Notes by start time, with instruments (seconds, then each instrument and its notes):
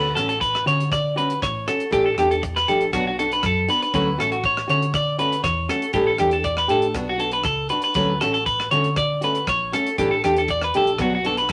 Already playing: fingered electric bass D2, clean electric guitar B4
0.15 fingered electric bass A1, nylon-string guitar C#4 F#4, clean electric guitar A4, cross-stick, closed hi-hat
0.29 clean electric guitar A4, closed hi-hat
0.41 clean electric guitar B4, kick, closed hi-hat
0.55 cross-stick
0.66 fingered electric bass D3, nylon-string guitar C#4 F#4, clean electric guitar C#5, closed hi-hat
0.80 closed hi-hat
0.92 clean electric guitar D5, kick, cross-stick, closed hi-hat
1.16 nylon-string guitar C#4 F#4, clean electric guitar B4, closed hi-hat
1.30 closed hi-hat
1.42 fingered electric bass A1, clean electric guitar C#5, kick, cross-stick, closed hi-hat
1.68 nylon-string guitar C#4 F#4, clean electric guitar A4, cross-stick, closed hi-hat
1.80 closed hi-hat
1.91 fingered electric bass A1, nylon-string guitar A3 D4 G4, clean electric guitar G4, muted nylon-string guitar stroke, kick, closed hi-hat
2.06 clean electric guitar A4
2.18 fingered electric bass E2, nylon-string guitar A3 D4 G4, clean electric guitar G4, cross-stick, closed hi-hat
2.31 clean electric guitar A4, closed hi-hat
2.43 muted clean electric guitar stroke, kick, closed hi-hat
2.56 clean electric guitar B4, cross-stick
2.68 fingered electric bass A#1, nylon-string guitar A3 D4 G4, clean electric guitar A4, closed hi-hat
2.81 closed hi-hat
2.93 fingered electric bass B1, nylon-string guitar F#3 B3 D4 F#4, clean electric guitar F#4, kick, cross-stick, closed hi-hat
3.07 clean electric guitar F#4
3.19 nylon-string guitar D4 F#4, clean electric guitar A4, closed hi-hat
3.32 clean electric guitar B4, closed hi-hat
3.43 fingered electric bass F#2, clean electric guitar A4, kick, cross-stick, closed hi-hat
3.68 nylon-string guitar B3 D4 F#4, clean electric guitar B4, closed hi-hat
3.82 clean electric guitar B4, closed hi-hat
3.94 fingered electric bass D2, nylon-string guitar F#3 A3 C#4 F#4, clean electric guitar B4, kick, closed hi-hat
4.18 fingered electric bass A1, nylon-string guitar A3 C#4 F#4, clean electric guitar A4, cross-stick, closed hi-hat
4.32 clean electric guitar F#4, closed hi-hat
4.44 clean electric guitar C#5, kick, closed hi-hat
4.57 cross-stick
4.68 fingered electric bass D3, nylon-string guitar A3 C#4 F#4, clean electric guitar C#5, closed hi-hat
4.82 closed hi-hat
4.94 clean electric guitar D5, kick, cross-stick, closed hi-hat
5.18 nylon-string guitar A3 C#4 F#4, clean electric guitar B4, closed hi-hat
5.32 closed hi-hat
5.44 fingered electric bass E2, clean electric guitar C#5, kick, cross-stick, closed hi-hat
5.69 nylon-string guitar A3 C#4 F#4, clean electric guitar A4, cross-stick, closed hi-hat
5.82 closed hi-hat
5.93 fingered electric bass A1, nylon-string guitar E3 A3 D4 G4, clean electric guitar G4, kick, closed hi-hat
6.07 clean electric guitar A4
6.18 fingered electric bass E2, nylon-string guitar A3 D4 G4, clean electric guitar G4, cross-stick, closed hi-hat
6.31 clean electric guitar A4, closed hi-hat
6.44 clean electric guitar D5, kick, closed hi-hat
6.57 clean electric guitar B4, cross-stick
6.68 fingered electric bass A2, nylon-string guitar A3 D4 G4, clean electric guitar A4, closed hi-hat
6.82 closed hi-hat
6.94 fingered electric bass B1, nylon-string guitar B3 D4 F#4, muted clean electric guitar stroke, kick, cross-stick, closed hi-hat
7.09 clean electric guitar F#4
7.18 nylon-string guitar D4 F#4, clean electric guitar A4, closed hi-hat
7.31 clean electric guitar B4, closed hi-hat
7.43 fingered electric bass C#2, clean electric guitar A4, kick, cross-stick, closed hi-hat
7.69 nylon-string guitar D4 F#4, clean electric guitar B4, closed hi-hat
7.82 clean electric guitar B4, closed hi-hat
7.94 fingered electric bass D2, nylon-string guitar F#3 A3 C#4 F#4, clean electric guitar B4, kick, closed hi-hat
8.21 fingered electric bass A1, nylon-string guitar A3 C#4 F#4, clean electric guitar A4, cross-stick, closed hi-hat
8.34 clean electric guitar A4, closed hi-hat
8.46 clean electric guitar B4, kick, closed hi-hat
8.60 cross-stick
8.71 fingered electric bass D3, nylon-string guitar A3 C#4 F#4, clean electric guitar C#5, closed hi-hat
8.84 closed hi-hat
8.96 clean electric guitar D5, kick, cross-stick, closed hi-hat
9.21 nylon-string guitar A3 C#4 F#4, clean electric guitar B4, closed hi-hat
9.35 closed hi-hat
9.47 fingered electric bass A#1, clean electric guitar C#5, kick, cross-stick, closed hi-hat
9.72 nylon-string guitar A3 C#4 F#4, clean electric guitar A4, cross-stick, closed hi-hat
9.87 closed hi-hat
9.98 fingered electric bass A1, nylon-string guitar E3 A3 D4 G4, clean electric guitar G4, kick, closed hi-hat
10.11 clean electric guitar A4
10.24 fingered electric bass E2, nylon-string guitar A3 D4 G4, clean electric guitar G4, cross-stick, closed hi-hat
10.37 clean electric guitar A4, closed hi-hat
10.48 clean electric guitar D5, kick, closed hi-hat
10.62 clean electric guitar B4, cross-stick
10.74 fingered electric bass A#1, nylon-string guitar A3 D4 G4, clean electric guitar A4, closed hi-hat
10.87 closed hi-hat
10.98 fingered electric bass B1, nylon-string guitar F#3 B3 D4 F#4, clean electric guitar F#4, kick, cross-stick, closed hi-hat
11.15 clean electric guitar F#4
11.25 nylon-string guitar B3 D4 F#4, clean electric guitar A4, closed hi-hat
11.37 clean electric guitar B4, closed hi-hat
11.49 cross-stick, closed hi-hat